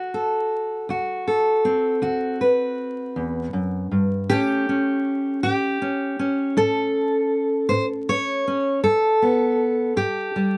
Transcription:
0, 0, Header, 1, 2, 480
1, 0, Start_track
1, 0, Key_signature, 2, "major"
1, 0, Tempo, 756620
1, 2729, Time_signature, 12, 3, 24, 8
1, 6708, End_track
2, 0, Start_track
2, 0, Title_t, "Steel-string acoustic guitar"
2, 0, Program_c, 0, 25
2, 0, Note_on_c, 0, 38, 70
2, 0, Note_on_c, 0, 66, 60
2, 0, Note_on_c, 0, 69, 72
2, 82, Note_off_c, 0, 69, 0
2, 89, Note_on_c, 0, 69, 53
2, 274, Note_off_c, 0, 38, 0
2, 565, Note_off_c, 0, 66, 0
2, 565, Note_on_c, 0, 38, 71
2, 572, Note_on_c, 0, 66, 53
2, 806, Note_off_c, 0, 69, 0
2, 809, Note_on_c, 0, 69, 58
2, 998, Note_off_c, 0, 38, 0
2, 1046, Note_on_c, 0, 60, 55
2, 1276, Note_off_c, 0, 66, 0
2, 1280, Note_on_c, 0, 38, 67
2, 1284, Note_on_c, 0, 66, 55
2, 1526, Note_off_c, 0, 69, 0
2, 1529, Note_on_c, 0, 71, 49
2, 1716, Note_off_c, 0, 38, 0
2, 2005, Note_on_c, 0, 40, 54
2, 2238, Note_off_c, 0, 40, 0
2, 2240, Note_on_c, 0, 42, 60
2, 2481, Note_off_c, 0, 42, 0
2, 2483, Note_on_c, 0, 43, 53
2, 2699, Note_off_c, 0, 66, 0
2, 2700, Note_off_c, 0, 60, 0
2, 2701, Note_off_c, 0, 71, 0
2, 2725, Note_on_c, 0, 67, 109
2, 2726, Note_off_c, 0, 43, 0
2, 2729, Note_on_c, 0, 45, 70
2, 2729, Note_on_c, 0, 57, 51
2, 2737, Note_on_c, 0, 61, 52
2, 2968, Note_off_c, 0, 61, 0
2, 2975, Note_on_c, 0, 61, 42
2, 3161, Note_off_c, 0, 45, 0
2, 3438, Note_off_c, 0, 67, 0
2, 3446, Note_on_c, 0, 67, 84
2, 3450, Note_on_c, 0, 45, 73
2, 3683, Note_off_c, 0, 61, 0
2, 3691, Note_on_c, 0, 61, 43
2, 3882, Note_off_c, 0, 45, 0
2, 3922, Note_off_c, 0, 61, 0
2, 3930, Note_on_c, 0, 61, 47
2, 4166, Note_on_c, 0, 45, 68
2, 4168, Note_off_c, 0, 67, 0
2, 4170, Note_on_c, 0, 69, 96
2, 4600, Note_off_c, 0, 45, 0
2, 4878, Note_on_c, 0, 72, 93
2, 4889, Note_on_c, 0, 45, 65
2, 4979, Note_off_c, 0, 72, 0
2, 5129, Note_off_c, 0, 69, 0
2, 5133, Note_on_c, 0, 73, 101
2, 5321, Note_off_c, 0, 45, 0
2, 5370, Note_off_c, 0, 61, 0
2, 5377, Note_on_c, 0, 61, 44
2, 5581, Note_off_c, 0, 57, 0
2, 5584, Note_off_c, 0, 61, 0
2, 5603, Note_off_c, 0, 73, 0
2, 5604, Note_on_c, 0, 43, 73
2, 5606, Note_on_c, 0, 69, 95
2, 5851, Note_on_c, 0, 59, 46
2, 6039, Note_off_c, 0, 43, 0
2, 6322, Note_off_c, 0, 59, 0
2, 6322, Note_on_c, 0, 43, 70
2, 6325, Note_on_c, 0, 67, 85
2, 6572, Note_on_c, 0, 55, 44
2, 6708, Note_off_c, 0, 43, 0
2, 6708, Note_off_c, 0, 55, 0
2, 6708, Note_off_c, 0, 67, 0
2, 6708, Note_off_c, 0, 69, 0
2, 6708, End_track
0, 0, End_of_file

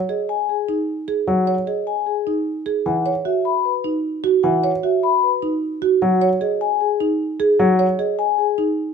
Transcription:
0, 0, Header, 1, 4, 480
1, 0, Start_track
1, 0, Key_signature, 5, "minor"
1, 0, Tempo, 394737
1, 1556, Time_signature, 4, 2, 24, 8
1, 10869, End_track
2, 0, Start_track
2, 0, Title_t, "Vibraphone"
2, 0, Program_c, 0, 11
2, 112, Note_on_c, 0, 75, 52
2, 356, Note_on_c, 0, 80, 68
2, 427, Note_off_c, 0, 75, 0
2, 598, Note_on_c, 0, 68, 52
2, 668, Note_off_c, 0, 80, 0
2, 909, Note_off_c, 0, 68, 0
2, 1552, Note_on_c, 0, 78, 67
2, 1867, Note_off_c, 0, 78, 0
2, 2032, Note_on_c, 0, 75, 50
2, 2273, Note_on_c, 0, 80, 63
2, 2347, Note_off_c, 0, 75, 0
2, 2510, Note_on_c, 0, 68, 53
2, 2587, Note_off_c, 0, 80, 0
2, 2826, Note_off_c, 0, 68, 0
2, 3479, Note_on_c, 0, 78, 66
2, 3790, Note_off_c, 0, 78, 0
2, 3956, Note_on_c, 0, 76, 56
2, 4196, Note_on_c, 0, 83, 66
2, 4268, Note_off_c, 0, 76, 0
2, 4437, Note_on_c, 0, 71, 53
2, 4508, Note_off_c, 0, 83, 0
2, 4749, Note_off_c, 0, 71, 0
2, 5391, Note_on_c, 0, 78, 67
2, 5707, Note_off_c, 0, 78, 0
2, 5880, Note_on_c, 0, 76, 54
2, 6121, Note_on_c, 0, 83, 74
2, 6190, Note_off_c, 0, 76, 0
2, 6361, Note_on_c, 0, 71, 52
2, 6430, Note_off_c, 0, 83, 0
2, 6670, Note_off_c, 0, 71, 0
2, 7320, Note_on_c, 0, 78, 72
2, 7630, Note_off_c, 0, 78, 0
2, 7805, Note_on_c, 0, 75, 56
2, 8038, Note_on_c, 0, 80, 75
2, 8111, Note_off_c, 0, 75, 0
2, 8277, Note_on_c, 0, 68, 56
2, 8349, Note_off_c, 0, 80, 0
2, 8589, Note_off_c, 0, 68, 0
2, 8997, Note_on_c, 0, 68, 60
2, 9237, Note_on_c, 0, 78, 70
2, 9309, Note_off_c, 0, 68, 0
2, 9549, Note_off_c, 0, 78, 0
2, 9714, Note_on_c, 0, 75, 61
2, 9955, Note_on_c, 0, 80, 76
2, 10027, Note_off_c, 0, 75, 0
2, 10194, Note_on_c, 0, 68, 60
2, 10268, Note_off_c, 0, 80, 0
2, 10508, Note_off_c, 0, 68, 0
2, 10869, End_track
3, 0, Start_track
3, 0, Title_t, "Marimba"
3, 0, Program_c, 1, 12
3, 0, Note_on_c, 1, 73, 65
3, 111, Note_on_c, 1, 68, 49
3, 187, Note_off_c, 1, 73, 0
3, 427, Note_off_c, 1, 68, 0
3, 833, Note_on_c, 1, 63, 52
3, 1147, Note_off_c, 1, 63, 0
3, 1313, Note_on_c, 1, 68, 63
3, 1627, Note_off_c, 1, 68, 0
3, 1791, Note_on_c, 1, 73, 66
3, 2034, Note_on_c, 1, 68, 48
3, 2106, Note_off_c, 1, 73, 0
3, 2348, Note_off_c, 1, 68, 0
3, 2758, Note_on_c, 1, 63, 56
3, 3069, Note_off_c, 1, 63, 0
3, 3234, Note_on_c, 1, 68, 66
3, 3548, Note_off_c, 1, 68, 0
3, 3717, Note_on_c, 1, 73, 66
3, 3955, Note_on_c, 1, 66, 52
3, 4029, Note_off_c, 1, 73, 0
3, 4268, Note_off_c, 1, 66, 0
3, 4674, Note_on_c, 1, 63, 55
3, 4987, Note_off_c, 1, 63, 0
3, 5153, Note_on_c, 1, 66, 73
3, 5467, Note_off_c, 1, 66, 0
3, 5637, Note_on_c, 1, 73, 66
3, 5877, Note_on_c, 1, 66, 53
3, 5949, Note_off_c, 1, 73, 0
3, 6189, Note_off_c, 1, 66, 0
3, 6596, Note_on_c, 1, 63, 58
3, 6908, Note_off_c, 1, 63, 0
3, 7076, Note_on_c, 1, 66, 71
3, 7388, Note_off_c, 1, 66, 0
3, 7557, Note_on_c, 1, 73, 70
3, 7794, Note_on_c, 1, 68, 58
3, 7869, Note_off_c, 1, 73, 0
3, 8108, Note_off_c, 1, 68, 0
3, 8517, Note_on_c, 1, 63, 60
3, 8829, Note_off_c, 1, 63, 0
3, 8995, Note_on_c, 1, 68, 74
3, 9308, Note_off_c, 1, 68, 0
3, 9474, Note_on_c, 1, 73, 74
3, 9716, Note_on_c, 1, 68, 57
3, 9788, Note_off_c, 1, 73, 0
3, 10028, Note_off_c, 1, 68, 0
3, 10434, Note_on_c, 1, 63, 58
3, 10747, Note_off_c, 1, 63, 0
3, 10869, End_track
4, 0, Start_track
4, 0, Title_t, "Grand piano"
4, 0, Program_c, 2, 0
4, 1549, Note_on_c, 2, 54, 62
4, 1866, Note_off_c, 2, 54, 0
4, 3475, Note_on_c, 2, 52, 61
4, 3788, Note_off_c, 2, 52, 0
4, 5396, Note_on_c, 2, 52, 71
4, 5708, Note_off_c, 2, 52, 0
4, 7319, Note_on_c, 2, 54, 71
4, 7630, Note_off_c, 2, 54, 0
4, 9235, Note_on_c, 2, 54, 78
4, 9548, Note_off_c, 2, 54, 0
4, 10869, End_track
0, 0, End_of_file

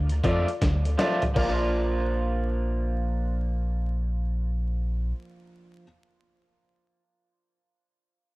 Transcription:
0, 0, Header, 1, 6, 480
1, 0, Start_track
1, 0, Key_signature, -2, "major"
1, 0, Tempo, 749625
1, 871, Time_signature, 4, 2, 24, 8
1, 5348, End_track
2, 0, Start_track
2, 0, Title_t, "Grand piano"
2, 0, Program_c, 0, 0
2, 152, Note_on_c, 0, 65, 82
2, 157, Note_on_c, 0, 69, 79
2, 159, Note_on_c, 0, 74, 90
2, 308, Note_off_c, 0, 65, 0
2, 311, Note_off_c, 0, 69, 0
2, 312, Note_off_c, 0, 74, 0
2, 545, Note_on_c, 0, 74, 28
2, 548, Note_on_c, 0, 69, 25
2, 579, Note_off_c, 0, 74, 0
2, 581, Note_off_c, 0, 69, 0
2, 628, Note_on_c, 0, 65, 81
2, 630, Note_on_c, 0, 69, 73
2, 637, Note_on_c, 0, 74, 89
2, 786, Note_off_c, 0, 65, 0
2, 787, Note_off_c, 0, 69, 0
2, 791, Note_off_c, 0, 74, 0
2, 868, Note_on_c, 0, 65, 84
2, 870, Note_on_c, 0, 70, 75
2, 874, Note_on_c, 0, 74, 84
2, 3725, Note_off_c, 0, 65, 0
2, 3726, Note_off_c, 0, 70, 0
2, 3728, Note_off_c, 0, 74, 0
2, 5348, End_track
3, 0, Start_track
3, 0, Title_t, "Clean electric guitar"
3, 0, Program_c, 1, 27
3, 151, Note_on_c, 1, 53, 84
3, 154, Note_on_c, 1, 57, 90
3, 158, Note_on_c, 1, 62, 95
3, 160, Note_on_c, 1, 65, 96
3, 299, Note_off_c, 1, 53, 0
3, 300, Note_off_c, 1, 57, 0
3, 302, Note_off_c, 1, 62, 0
3, 303, Note_off_c, 1, 65, 0
3, 625, Note_on_c, 1, 53, 92
3, 630, Note_on_c, 1, 57, 95
3, 635, Note_on_c, 1, 62, 96
3, 637, Note_on_c, 1, 65, 93
3, 776, Note_off_c, 1, 53, 0
3, 778, Note_off_c, 1, 57, 0
3, 781, Note_off_c, 1, 62, 0
3, 782, Note_off_c, 1, 65, 0
3, 859, Note_on_c, 1, 53, 79
3, 873, Note_on_c, 1, 58, 75
3, 880, Note_on_c, 1, 62, 80
3, 892, Note_on_c, 1, 65, 83
3, 3746, Note_off_c, 1, 53, 0
3, 3753, Note_off_c, 1, 58, 0
3, 3757, Note_off_c, 1, 62, 0
3, 3763, Note_off_c, 1, 65, 0
3, 5348, End_track
4, 0, Start_track
4, 0, Title_t, "Clean electric guitar"
4, 0, Program_c, 2, 27
4, 400, Note_on_c, 2, 50, 76
4, 541, Note_off_c, 2, 50, 0
4, 5348, End_track
5, 0, Start_track
5, 0, Title_t, "Sub bass"
5, 0, Program_c, 3, 38
5, 0, Note_on_c, 3, 38, 100
5, 133, Note_off_c, 3, 38, 0
5, 153, Note_on_c, 3, 41, 85
5, 292, Note_off_c, 3, 41, 0
5, 399, Note_on_c, 3, 38, 94
5, 613, Note_off_c, 3, 38, 0
5, 876, Note_on_c, 3, 34, 105
5, 3281, Note_off_c, 3, 34, 0
5, 5348, End_track
6, 0, Start_track
6, 0, Title_t, "Drums"
6, 60, Note_on_c, 9, 42, 59
6, 124, Note_off_c, 9, 42, 0
6, 151, Note_on_c, 9, 36, 89
6, 154, Note_on_c, 9, 42, 64
6, 215, Note_off_c, 9, 36, 0
6, 218, Note_off_c, 9, 42, 0
6, 309, Note_on_c, 9, 42, 51
6, 373, Note_off_c, 9, 42, 0
6, 394, Note_on_c, 9, 42, 94
6, 395, Note_on_c, 9, 36, 106
6, 395, Note_on_c, 9, 38, 54
6, 458, Note_off_c, 9, 42, 0
6, 459, Note_off_c, 9, 36, 0
6, 459, Note_off_c, 9, 38, 0
6, 546, Note_on_c, 9, 42, 53
6, 610, Note_off_c, 9, 42, 0
6, 632, Note_on_c, 9, 42, 74
6, 633, Note_on_c, 9, 38, 88
6, 696, Note_off_c, 9, 42, 0
6, 697, Note_off_c, 9, 38, 0
6, 781, Note_on_c, 9, 42, 49
6, 784, Note_on_c, 9, 43, 84
6, 845, Note_off_c, 9, 42, 0
6, 848, Note_off_c, 9, 43, 0
6, 871, Note_on_c, 9, 36, 101
6, 872, Note_on_c, 9, 49, 79
6, 935, Note_off_c, 9, 36, 0
6, 936, Note_off_c, 9, 49, 0
6, 5348, End_track
0, 0, End_of_file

